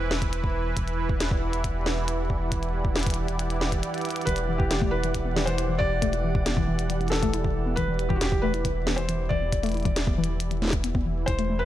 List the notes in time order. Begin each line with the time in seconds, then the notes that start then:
Already playing: E1 E3 E4 B4 C5 G5
0.11 snare
0.22 kick, closed hi-hat
0.33 closed hi-hat
0.44 kick
0.77 E1, kick, closed hi-hat
0.88 closed hi-hat
1.06 D5 F#5, kick
1.12 G4
1.20 snare, closed hi-hat
1.31 kick
1.53 closed hi-hat
1.64 kick, closed hi-hat
1.86 snare
2.08 closed hi-hat
2.30 kick
2.52 kick, closed hi-hat
2.63 closed hi-hat
2.85 kick
2.96 snare, closed hi-hat
2.99 closed hi-hat
3.03 closed hi-hat
3.07 kick, closed hi-hat
3.10 closed hi-hat
3.14 closed hi-hat
3.28 closed hi-hat
3.39 closed hi-hat
3.50 closed hi-hat
3.61 snare
3.72 kick, closed hi-hat
3.83 closed hi-hat
3.94 closed hi-hat
3.98 closed hi-hat
4.01 closed hi-hat
4.05 closed hi-hat
4.09 closed hi-hat
4.11 closed hi-hat
4.12 closed hi-hat
4.16 closed hi-hat
4.21 B4, closed hi-hat
4.27 E1 E3, kick, closed hi-hat
4.29 closed hi-hat
4.36 closed hi-hat
4.38 closed hi-hat
4.49 E3
4.58 E2 G4, kick
4.71 snare, closed hi-hat
4.82 A3, kick
4.91 E4 B4
5.04 E3, closed hi-hat
5.15 kick, closed hi-hat
5.25 B3
5.36 E3, snare
5.46 E3 C5, closed hi-hat
5.58 closed hi-hat
5.69 E3
5.79 E2 D5, kick
6.02 A3, kick, closed hi-hat
6.13 E4, closed hi-hat
6.24 E3
6.35 kick
6.46 B3, snare, closed hi-hat
6.57 E3, kick
6.68 E3
6.79 closed hi-hat
6.90 E3, closed hi-hat
7.01 E2, closed hi-hat
7.08 A4, snare, closed hi-hat
7.15 closed hi-hat
7.23 A3, kick, closed hi-hat
7.34 E4, closed hi-hat
7.44 E3, kick
7.66 B3
7.76 E3 B4, kick, closed hi-hat
7.88 E3
7.99 closed hi-hat
8.09 E3 G4, kick
8.16 F#4
8.21 E2 G4, snare, closed hi-hat
8.32 kick
8.42 A3 B4
8.54 E4, closed hi-hat
8.65 E3, kick, closed hi-hat
8.87 B3, snare
8.96 E3 C5, closed hi-hat
9.09 E3, closed hi-hat
9.29 E3 D5, kick
9.41 E2
9.52 kick, closed hi-hat
9.63 A3, closed hi-hat
9.66 closed hi-hat
9.72 E4, closed hi-hat
9.74 closed hi-hat
9.77 closed hi-hat
9.80 closed hi-hat
9.83 E3, kick, closed hi-hat
9.85 closed hi-hat
9.96 snare, closed hi-hat
10.07 B3, kick
10.18 E3
10.24 closed hi-hat
10.29 E3
10.40 closed hi-hat
10.51 E3, closed hi-hat
10.62 A3, snare
10.65 snare
10.67 snare
10.70 kick, snare, closed hi-hat
10.84 B3, closed hi-hat
10.95 B3, kick
11.06 E3
11.26 E1 E3 E4 C5, kick, closed hi-hat
11.39 A3 E4, closed hi-hat
11.50 A3
11.59 B4